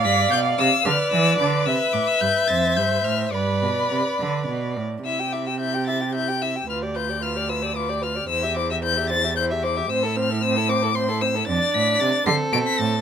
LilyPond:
<<
  \new Staff \with { instrumentName = "Violin" } { \time 6/8 \key c \major \tempo 4. = 74 b'''8 g'''8 e'''8 f'''8 e'''8 d'''8 | e'''8 d'''16 e'''16 g'''8 a'''8 g'''8 f'''8 | b''2~ b''8 r8 | e'''8 d'''16 e'''16 g'''8 a'''8 g'''8 e'''8 |
f'''8 g'''8 f'''8 e'''8 d'''8 f'''8 | e'''8 d'''16 e'''16 g'''8 a'''8 g'''8 d'''8 | e'''8 f'''8 e'''8 d'''8 c'''8 e'''8 | a'''8 b'''8 a'''8 c''''8 d''''16 b'''16 a'''8 | }
  \new Staff \with { instrumentName = "Violin" } { \time 6/8 \key c \major f''4. d''4. | e''2. | d''2~ d''8 r8 | e''16 g''16 e''16 g''16 e''16 g''16 e''16 g''16 e''16 g''16 e''16 g''16 |
b'16 d''16 b'16 d''16 b'16 d''16 b'16 d''16 b'16 d''16 b'16 d''16 | c''16 e''16 c''16 e''16 c''16 e''16 c''16 e''16 c''16 e''16 c''16 e''16 | c''16 a'16 c''16 a'16 c''16 a'16 c''16 a'16 c''16 a'16 c''16 a'16 | d''4. a'4. | }
  \new Staff \with { instrumentName = "Viola" } { \time 6/8 \key c \major d''4. b'4.~ | b'4. c''4. | b'2~ b'16 r8. | e'16 g'16 e'16 g'16 e'16 g'16 e'16 g'16 e'16 g'16 e'16 g'16 |
f'16 g'16 f'16 g'16 f'16 g'16 f'16 g'16 f'16 g'16 f'16 g'16 | e'16 g'16 e'16 g'16 e'16 g'16 e'16 g'16 e'16 g'16 e'16 g'16 | c'16 e'16 c'16 e'16 c'16 e'16 c'16 e'16 c'16 e'16 c'16 e'16 | d'4. c'4. | }
  \new Staff \with { instrumentName = "Cello" } { \clef bass \time 6/8 \key c \major g,8 b,8 c8 d8 e8 d8 | c8 a,8 g,8 f,8 g,8 a,8 | g,8 b,8 c8 d8 b,8 a,8 | c2. |
d,2. | e,2. | a,2. | f,8 a,8 c8 d8 b,8 a,8 | }
>>